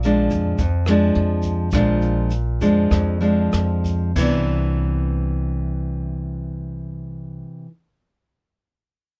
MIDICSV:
0, 0, Header, 1, 4, 480
1, 0, Start_track
1, 0, Key_signature, 0, "major"
1, 0, Tempo, 564972
1, 1464, Time_signature, 4, 2, 24, 8
1, 1464, Tempo, 601805
1, 2904, Tempo, 647249
1, 7105, End_track
2, 0, Start_track
2, 0, Title_t, "Nylon-string guitar"
2, 0, Program_c, 0, 24
2, 0, Note_on_c, 0, 46, 53
2, 40, Note_on_c, 0, 53, 48
2, 44, Note_on_c, 0, 56, 48
2, 49, Note_on_c, 0, 62, 57
2, 478, Note_off_c, 0, 46, 0
2, 502, Note_off_c, 0, 53, 0
2, 504, Note_off_c, 0, 56, 0
2, 507, Note_off_c, 0, 62, 0
2, 513, Note_on_c, 0, 41, 53
2, 748, Note_on_c, 0, 53, 64
2, 754, Note_on_c, 0, 56, 57
2, 764, Note_on_c, 0, 62, 62
2, 1431, Note_off_c, 0, 53, 0
2, 1434, Note_off_c, 0, 56, 0
2, 1439, Note_off_c, 0, 62, 0
2, 1448, Note_off_c, 0, 41, 0
2, 1472, Note_on_c, 0, 46, 56
2, 1475, Note_on_c, 0, 53, 54
2, 1475, Note_on_c, 0, 56, 54
2, 1479, Note_on_c, 0, 62, 56
2, 1934, Note_off_c, 0, 53, 0
2, 1934, Note_off_c, 0, 56, 0
2, 1935, Note_off_c, 0, 62, 0
2, 2174, Note_on_c, 0, 53, 54
2, 2177, Note_on_c, 0, 56, 55
2, 2179, Note_on_c, 0, 62, 57
2, 2391, Note_off_c, 0, 46, 0
2, 2409, Note_on_c, 0, 41, 49
2, 2619, Note_off_c, 0, 53, 0
2, 2619, Note_off_c, 0, 56, 0
2, 2621, Note_off_c, 0, 62, 0
2, 2646, Note_on_c, 0, 53, 54
2, 2653, Note_on_c, 0, 56, 57
2, 2657, Note_on_c, 0, 62, 55
2, 3334, Note_off_c, 0, 53, 0
2, 3337, Note_off_c, 0, 56, 0
2, 3338, Note_off_c, 0, 62, 0
2, 3352, Note_off_c, 0, 41, 0
2, 3370, Note_on_c, 0, 48, 57
2, 3387, Note_on_c, 0, 52, 64
2, 3399, Note_on_c, 0, 59, 59
2, 3411, Note_on_c, 0, 62, 65
2, 5965, Note_off_c, 0, 48, 0
2, 5983, Note_off_c, 0, 52, 0
2, 5994, Note_off_c, 0, 59, 0
2, 6006, Note_off_c, 0, 62, 0
2, 7105, End_track
3, 0, Start_track
3, 0, Title_t, "Upright bass"
3, 0, Program_c, 1, 32
3, 0, Note_on_c, 1, 34, 85
3, 227, Note_off_c, 1, 34, 0
3, 262, Note_on_c, 1, 41, 82
3, 481, Note_off_c, 1, 41, 0
3, 500, Note_on_c, 1, 41, 82
3, 945, Note_off_c, 1, 41, 0
3, 984, Note_on_c, 1, 41, 87
3, 1434, Note_off_c, 1, 41, 0
3, 1467, Note_on_c, 1, 34, 88
3, 2140, Note_off_c, 1, 34, 0
3, 2173, Note_on_c, 1, 41, 80
3, 2396, Note_off_c, 1, 41, 0
3, 2411, Note_on_c, 1, 41, 83
3, 2872, Note_off_c, 1, 41, 0
3, 2908, Note_on_c, 1, 41, 83
3, 3349, Note_off_c, 1, 41, 0
3, 3376, Note_on_c, 1, 36, 78
3, 5786, Note_off_c, 1, 36, 0
3, 7105, End_track
4, 0, Start_track
4, 0, Title_t, "Drums"
4, 25, Note_on_c, 9, 42, 42
4, 32, Note_on_c, 9, 82, 54
4, 110, Note_off_c, 9, 42, 0
4, 117, Note_off_c, 9, 82, 0
4, 261, Note_on_c, 9, 82, 61
4, 262, Note_on_c, 9, 36, 20
4, 263, Note_on_c, 9, 42, 25
4, 346, Note_off_c, 9, 82, 0
4, 347, Note_off_c, 9, 36, 0
4, 348, Note_off_c, 9, 42, 0
4, 497, Note_on_c, 9, 42, 39
4, 497, Note_on_c, 9, 82, 60
4, 499, Note_on_c, 9, 36, 56
4, 582, Note_off_c, 9, 42, 0
4, 582, Note_off_c, 9, 82, 0
4, 584, Note_off_c, 9, 36, 0
4, 729, Note_on_c, 9, 82, 24
4, 733, Note_on_c, 9, 37, 60
4, 733, Note_on_c, 9, 42, 26
4, 814, Note_off_c, 9, 82, 0
4, 818, Note_off_c, 9, 37, 0
4, 818, Note_off_c, 9, 42, 0
4, 978, Note_on_c, 9, 42, 45
4, 1063, Note_off_c, 9, 42, 0
4, 1211, Note_on_c, 9, 82, 59
4, 1221, Note_on_c, 9, 36, 21
4, 1224, Note_on_c, 9, 42, 26
4, 1296, Note_off_c, 9, 82, 0
4, 1306, Note_off_c, 9, 36, 0
4, 1309, Note_off_c, 9, 42, 0
4, 1455, Note_on_c, 9, 82, 59
4, 1467, Note_on_c, 9, 36, 57
4, 1472, Note_on_c, 9, 37, 56
4, 1472, Note_on_c, 9, 42, 41
4, 1536, Note_off_c, 9, 82, 0
4, 1547, Note_off_c, 9, 36, 0
4, 1552, Note_off_c, 9, 37, 0
4, 1552, Note_off_c, 9, 42, 0
4, 1698, Note_on_c, 9, 82, 26
4, 1705, Note_on_c, 9, 42, 26
4, 1777, Note_off_c, 9, 82, 0
4, 1785, Note_off_c, 9, 42, 0
4, 1928, Note_on_c, 9, 82, 53
4, 1935, Note_on_c, 9, 42, 41
4, 2008, Note_off_c, 9, 82, 0
4, 2015, Note_off_c, 9, 42, 0
4, 2170, Note_on_c, 9, 42, 25
4, 2172, Note_on_c, 9, 36, 22
4, 2174, Note_on_c, 9, 82, 63
4, 2250, Note_off_c, 9, 42, 0
4, 2251, Note_off_c, 9, 36, 0
4, 2254, Note_off_c, 9, 82, 0
4, 2413, Note_on_c, 9, 36, 51
4, 2413, Note_on_c, 9, 37, 52
4, 2413, Note_on_c, 9, 42, 36
4, 2415, Note_on_c, 9, 82, 56
4, 2492, Note_off_c, 9, 36, 0
4, 2493, Note_off_c, 9, 37, 0
4, 2493, Note_off_c, 9, 42, 0
4, 2494, Note_off_c, 9, 82, 0
4, 2654, Note_on_c, 9, 42, 26
4, 2660, Note_on_c, 9, 82, 24
4, 2734, Note_off_c, 9, 42, 0
4, 2740, Note_off_c, 9, 82, 0
4, 2902, Note_on_c, 9, 82, 52
4, 2904, Note_on_c, 9, 37, 53
4, 2904, Note_on_c, 9, 42, 38
4, 2976, Note_off_c, 9, 82, 0
4, 2978, Note_off_c, 9, 37, 0
4, 2978, Note_off_c, 9, 42, 0
4, 3135, Note_on_c, 9, 42, 24
4, 3136, Note_on_c, 9, 36, 23
4, 3143, Note_on_c, 9, 82, 54
4, 3209, Note_off_c, 9, 42, 0
4, 3210, Note_off_c, 9, 36, 0
4, 3217, Note_off_c, 9, 82, 0
4, 3370, Note_on_c, 9, 49, 59
4, 3373, Note_on_c, 9, 36, 66
4, 3378, Note_on_c, 9, 82, 83
4, 3444, Note_off_c, 9, 49, 0
4, 3447, Note_off_c, 9, 36, 0
4, 3453, Note_off_c, 9, 82, 0
4, 7105, End_track
0, 0, End_of_file